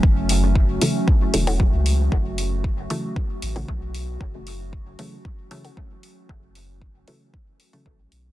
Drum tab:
HH |--o---o---oo--o-|--o---o---oo--o-|--o---o---oo--o-|--o---o---oo--o-|
BD |o---o---o---o---|o---o---o---o---|o---o---o---o---|o---o---o---o---|